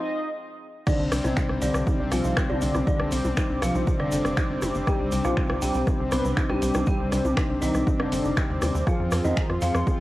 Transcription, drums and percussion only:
0.87 kick, cross-stick, crash, shaker
1.12 cross-stick, open hi-hat, shaker
1.24 mid tom, shaker
1.37 finger snap, kick, shaker
1.49 cross-stick
1.62 open hi-hat, shaker
1.74 cross-stick, shaker
1.87 kick, shaker
2.12 cross-stick, open hi-hat, shaker
2.24 shaker
2.37 finger snap, kick, cross-stick, shaker
2.50 mid tom
2.61 open hi-hat, shaker
2.74 cross-stick, mid tom, shaker
2.87 kick, shaker
3.00 cross-stick
3.12 open hi-hat, shaker
3.24 mid tom, shaker
3.37 finger snap, kick, cross-stick, shaker
3.62 cross-stick, open hi-hat, shaker
3.75 shaker
3.87 kick, shaker
4.00 cross-stick
4.12 open hi-hat, shaker
4.25 cross-stick, shaker
4.37 finger snap, kick, shaker
4.62 cross-stick, open hi-hat, mid tom, shaker
4.74 shaker
4.87 kick, cross-stick, shaker
5.12 open hi-hat, shaker
5.24 cross-stick, mid tom, shaker
5.37 finger snap, kick, shaker
5.50 cross-stick
5.62 open hi-hat, shaker
5.74 shaker
5.87 kick, cross-stick, shaker
6.12 cross-stick, open hi-hat, shaker
6.25 shaker
6.37 finger snap, kick, shaker
6.50 cross-stick, mid tom
6.62 open hi-hat, shaker
6.74 cross-stick, mid tom, shaker
6.86 kick, shaker
7.12 cross-stick, open hi-hat, shaker
7.25 mid tom, shaker
7.37 finger snap, kick, cross-stick, shaker
7.62 open hi-hat, shaker
7.74 cross-stick, shaker
7.87 kick, shaker
8.00 cross-stick
8.12 open hi-hat, shaker
8.24 shaker
8.37 finger snap, kick, cross-stick, shaker
8.62 cross-stick, open hi-hat, mid tom, shaker
8.75 shaker
8.87 kick, cross-stick, shaker
9.11 cross-stick, open hi-hat, shaker
9.25 mid tom, shaker
9.37 finger snap, kick, shaker
9.50 cross-stick
9.62 open hi-hat, shaker
9.75 cross-stick, shaker
9.87 kick, shaker

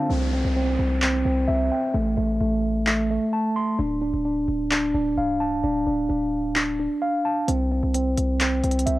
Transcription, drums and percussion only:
1.02 clap
2.87 clap
4.71 clap
6.56 clap
7.48 closed hi-hat
7.94 closed hi-hat
8.17 closed hi-hat
8.40 clap, closed hi-hat
8.64 closed hi-hat
8.71 closed hi-hat
8.79 closed hi-hat
8.87 closed hi-hat

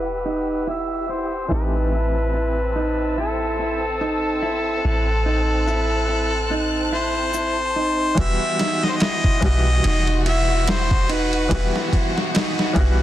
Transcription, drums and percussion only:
2.34 shaker
4.01 shaker
5.68 shaker
7.34 shaker
8.18 kick, ride
8.59 snare, ride
8.84 snare
9.00 snare, ride
9.24 kick
9.42 kick, ride
9.84 ride
10.07 ride
10.26 ride
10.68 snare, ride
10.91 kick
11.09 ride
11.33 ride
11.51 kick, ride
11.76 snare
11.93 kick, ride
12.18 snare
12.35 snare, ride
12.59 snare
12.76 kick, ride

